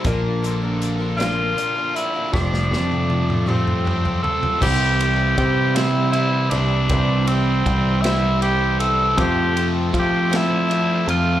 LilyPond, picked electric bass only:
\new Staff \with { instrumentName = "Picked electric bass" } { \clef bass \time 6/8 \key c \mixolydian \tempo 4. = 53 bes,,2 r4 | f,,8 f,2 r8 | c,4 c4. c,8 | c,4 c,2 |
f,4 f4. f,8 | }